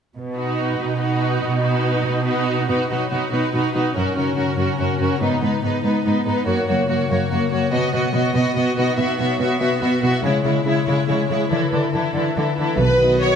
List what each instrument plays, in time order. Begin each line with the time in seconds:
0.16 cello section B2
0.37 viola section D#4, violin section F#4 B4
0.79 cello section B2
0.99 viola section D#4, violin section F#4 B4
1.42 cello section B2
1.62 viola section D#4, violin section F#4 B4
2.05 cello section B2
2.26 viola section D#4, violin section F#4 B4
2.69 harp B2, cello section B2, viola section D#4, violin section F#4 B4
2.90 cello section B2, harp F#3, viola section D#4, violin section F#4 B4
3.11 cello section B2, viola section D#4, harp F#4, violin section F#4 B4
3.32 cello section B2, viola section D#4, violin section F#4 B4, harp B4
3.53 cello section B2, viola section D#4, violin section F#4 B4, harp F#4
3.74 cello section B2, viola section D#4, harp D#4, violin section F#4 B4
3.95 harp F#2, cello section F#2, viola section C#4, violin section F#4 A#4
4.16 cello section F#2, harp C#3, viola section C#4, violin section F#4 A#4
4.37 cello section F#2, viola section C#4, violin section F#4 A#4, harp F#4
4.58 cello section F#2, viola section C#4, violin section F#4 A#4, harp A#4
4.78 cello section F#2, viola section C#4, harp F#4, violin section F#4 A#4
5.00 cello section F#2, viola section C#4, harp C#4, violin section F#4 A#4
5.21 cello section G#2, harp G#2, viola section B3, violin section D#4 B4
5.42 cello section G#2, harp D#3, viola section B3, violin section D#4 B4
5.63 cello section G#2, viola section B3, harp D#4, violin section D#4 B4
5.84 cello section G#2, viola section B3, violin section D#4 B4, harp B4
6.05 cello section G#2, viola section B3, harp D#4, violin section D#4 B4
6.26 cello section G#2, viola section B3, harp B3, violin section D#4 B4
6.47 cello section F#2, harp F#2, viola section A#3, violin section F#4 C#5
6.68 cello section F#2, harp C#3, viola section A#3, violin section F#4 C#5
6.89 cello section F#2, viola section A#3, harp F#4, violin section F#4 C#5
7.10 cello section F#2, viola section A#3, violin section F#4 C#5, harp A#4
7.31 cello section F#2, viola section A#3, harp F#4, violin section F#4 C#5
7.51 cello section F#2, viola section A#3, harp C#4, violin section F#4 C#5
7.72 cello section B2, harp B2, viola section B3, violin section F#4 D#5
7.92 cello section B2, harp F#3, viola section B3, violin section F#4 D#5
8.13 cello section B2, viola section B3, harp F#4, violin section F#4 D#5
8.35 cello section B2, viola section B3, violin section F#4 D#5, harp B4
8.56 cello section B2, viola section B3, harp F#4, violin section F#4 D#5
8.77 cello section B2, viola section B3, harp D#4, violin section F#4 D#5
8.97 harp B2, cello section B2, viola section B3, violin section F#4 E5
9.18 cello section B2, harp F#3, viola section B3, violin section F#4 E5
9.39 cello section B2, viola section B3, harp F#4, violin section F#4 E5
9.60 cello section B2, viola section B3, violin section F#4 E5, harp B4
9.81 cello section B2, viola section B3, violin section F#4 E5, harp F#4
10.03 cello section B2, viola section B3, harp E4, violin section F#4 E5
10.23 cello section C#3, harp C#3, viola section G#3, violin section E4 C#5
10.44 cello section C#3, harp G#3, viola section G#3, violin section E4 C#5
10.65 cello section C#3, viola section G#3, harp E4, violin section E4 C#5
10.87 cello section C#3, viola section G#3, violin section E4 C#5, harp E5
11.08 cello section C#3, viola section G#3, violin section E4 C#5, harp E4
11.30 cello section C#3, viola section G#3, harp C#4, violin section E4 C#5
11.51 cello section D3, harp D3, viola section E3, violin section E4 A4
11.72 cello section D3, viola section E3, harp D4, violin section E4 A4
11.93 cello section D3, viola section E3, harp E4, violin section E4 A4
12.14 cello section D3, viola section E3, violin section E4 A4, harp E5
12.35 cello section D3, viola section E3, harp E4, violin section E4 A4
12.57 cello section D3, viola section E3, harp A3, violin section E4 A4
12.78 double bass section B1, cello section B2, timpani B2, harp B2, trombone section D#3 F#3, french horn section B3 F#4, violin section B4
13.00 viola section B3 F#4, harp D#4, violin section D#5
13.22 harp F#3, violin section C#5